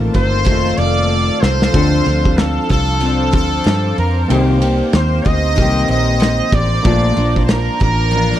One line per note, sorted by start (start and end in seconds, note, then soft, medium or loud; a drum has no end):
0.00 0.43 D#3 soft
0.00 0.47 A3 medium
0.00 1.69 A3 medium
0.00 1.69 C4 medium
0.00 0.46 D#4 medium
0.00 1.70 D#4 medium
0.00 0.47 F4 soft
0.00 1.70 F4 medium
0.00 1.71 A4 medium
0.00 1.71 C5 medium
0.00 4.26 F5 medium
0.14 0.47 G1 medium
0.14 0.79 C5 loud
0.14 kick medium
0.14 ride medium
0.44 0.72 F1 loud
0.44 1.73 D#3 medium
0.44 1.75 A3 medium
0.44 kick loud
0.44 ride medium
0.49 1.75 D#4 medium
0.49 1.76 F4 medium
0.66 snare soft
0.77 1.29 F1 loud
0.77 1.42 D5 loud
0.77 ride medium
1.41 1.68 C2 medium
1.41 2.39 C5 loud
1.41 snare medium
1.62 snare loud
1.71 2.00 D2 loud
1.71 2.06 D3 medium
1.71 4.24 F3 medium
1.71 2.06 F3 medium
1.71 4.25 C4 medium
1.71 2.06 C4 medium
1.71 4.26 D4 medium
1.71 6.81 C5 loud
1.71 4.27 D6 medium
1.71 kick loud
1.71 ride medium
1.75 2.07 D4 medium
1.75 4.26 F4 medium
1.75 2.05 A4 medium
1.75 4.27 C5 medium
2.06 2.57 D2 loud
2.06 3.03 C4 soft
2.06 3.03 D4 medium
2.06 3.02 A4 soft
2.06 ride medium
2.25 kick medium
2.38 2.70 A4 medium
2.38 snare loud
2.38 ride medium
2.69 3.34 C2 medium
2.69 3.30 A4 loud
2.69 kick medium
2.69 ride medium
3.00 4.29 F3 medium
3.00 4.30 C4 medium
3.00 ride medium
3.05 4.30 D4 medium
3.33 3.59 D2 loud
3.33 3.94 A4 medium
3.33 kick medium
3.33 ride medium
3.64 3.91 G2 medium
3.64 snare loud
3.64 ride medium
3.98 4.23 F2 medium
3.98 4.58 A#4 medium
3.98 ride medium
4.28 4.81 C2 loud
4.28 4.61 C3 medium
4.28 4.62 D#3 medium
4.28 6.81 A#3 medium
4.28 4.62 A#3 medium
4.28 6.81 C4 medium
4.28 4.61 C4 medium
4.28 6.82 D#4 medium
4.28 4.59 G4 medium
4.28 6.82 G4 medium
4.28 6.83 A#5 medium
4.28 ride medium
4.33 6.83 C5 medium
4.60 5.57 A#3 soft
4.60 5.58 C4 soft
4.60 5.57 G4 medium
4.60 ride medium
4.93 5.19 D#2 loud
4.93 5.28 C5 loud
4.93 snare loud
4.93 ride medium
5.25 5.60 D2 medium
5.25 5.90 D#5 loud
5.25 kick medium
5.25 ride medium
5.55 5.83 C2 loud
5.55 6.84 D#3 medium
5.55 6.86 A#3 medium
5.55 kick medium
5.55 ride medium
5.60 6.86 C4 medium
5.60 6.87 G4 medium
5.77 snare soft
5.88 6.40 A#1 loud
5.88 6.56 D#5 loud
5.88 ride medium
6.20 snare loud
6.20 ride medium
6.52 6.78 A1 medium
6.52 7.44 D5 loud
6.52 kick loud
6.52 ride medium
6.82 7.11 A#1 loud
6.82 7.17 A#2 medium
6.82 7.17 F3 medium
6.82 8.40 A#3 medium
6.82 8.40 D4 medium
6.82 8.40 F4 medium
6.82 8.40 D5 medium
6.82 8.40 A5 medium
6.82 8.40 D6 medium
6.82 kick loud
6.82 ride medium
6.86 7.18 A3 medium
6.86 7.17 D4 medium
6.86 7.15 F4 medium
6.86 8.40 D5 medium
6.86 8.40 A5 medium
7.16 7.68 A#1 loud
7.16 8.13 D4 soft
7.16 8.17 F4 medium
7.16 ride medium
7.36 kick medium
7.46 7.53 C5 medium
7.46 snare loud
7.46 ride medium
7.51 7.82 A#4 medium
7.80 8.32 A1 loud
7.80 8.40 A#4 loud
7.80 kick medium
7.80 ride medium
8.11 8.40 F3 medium
8.11 ride medium
8.16 8.40 D4 medium
8.16 8.40 F4 medium
8.32 snare soft